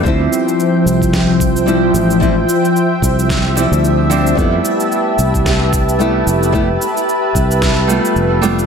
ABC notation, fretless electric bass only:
X:1
M:4/4
L:1/16
Q:"Swing 16ths" 1/4=111
K:Ddor
V:1 name="Fretless electric bass" clef=bass
D,, z4 z C,,8 A,,,2- | A,,,2 z4 C,,4- C,, D,,4- D,, | F,, z4 z C,,8 F,,,2- | F,,,2 z4 C,,4- C,, z F,,,4 |]